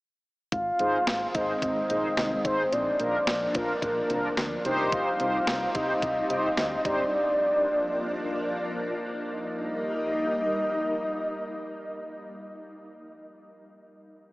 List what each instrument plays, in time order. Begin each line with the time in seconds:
0.52 fm bass G#1, string machine D#3 G#3 C4, soft synth lead F5, kick, closed hi-hat
0.79 fm bass G#1, analog polysynth D#4 G#4 C5, closed hi-hat
1.07 fm bass G#1, snare, closed hi-hat
1.35 fm bass G#1, analog polysynth D#4 G#4 C5, soft synth lead D#5, kick, closed hi-hat
1.62 fm bass G#1, soft synth lead D#5, kick, closed hi-hat
1.90 fm bass A#1, analog polysynth D#4 G#4 C5, closed hi-hat
2.17 fm bass C2, snare, closed hi-hat
2.45 fm bass G#1, analog polysynth D#4 G#4 C5, soft synth lead C5, kick, closed hi-hat
2.72 fm bass A#1, string machine F3 A#3 D4, soft synth lead D5, closed hi-hat
3.00 fm bass A#1, analog polysynth D4 F4 A#4, soft synth lead D5, closed hi-hat
3.27 fm bass A#1, snare, closed hi-hat
3.55 fm bass A#1, analog polysynth D4 F4 A#4, soft synth lead A#4, kick, closed hi-hat
3.82 fm bass A#1, kick, closed hi-hat
4.10 fm bass C2, analog polysynth D4 F4 A#4, closed hi-hat
4.37 fm bass D2, snare, closed hi-hat
4.65 fm bass C2, string machine G3 C4 D#4, analog polysynth D#4 G4 C5, closed hi-hat
4.92 soft synth lead F5, kick, closed hi-hat
5.20 fm bass C2, analog polysynth D#4 G4 C5, closed hi-hat
5.47 fm bass C2, snare, closed hi-hat
5.75 fm bass C2, analog polysynth D#4 G4 C5, soft synth lead D#5, kick, closed hi-hat
6.02 fm bass C2, kick, closed hi-hat
6.30 fm bass C2, analog polysynth D#4 G4 C5, closed hi-hat
6.57 fm bass D2, snare, closed hi-hat
6.85 fm bass G#1, analog polysynth D#4 G4 C5, soft synth lead D5, kick, closed hi-hat
7.13 string machine F3 A#3 D4
9.33 string machine G3 A#3 D#4, soft synth lead D#5